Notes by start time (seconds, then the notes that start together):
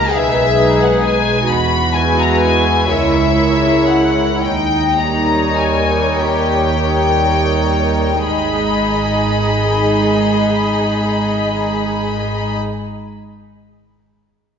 Already playing: A#3 D#4 A#5
0.11 B1 G#3 D#4 G#4 B4 E5
0.57 G#3 D#4 G#4 B4
0.81 F#5
1.04 G#5
1.49 E2 F#4 B5
1.95 G#3 E4 G#4 B4 G#5
2.20 A#5
2.42 G#5
2.89 C#2 G#3 E4 A#4 C#5 E5
3.38 G#3 E4 A#4 C#5
3.89 F#5
4.42 D#2 D#4 G5
4.97 G3 D#4 A#4 C#5 A#5
5.55 G#5
6.18 D#2 G4 G5
6.83 G3 D#4 A#4 C#5
8.25 G#1 G#2 G#3 D#4 G#4 D#5 B5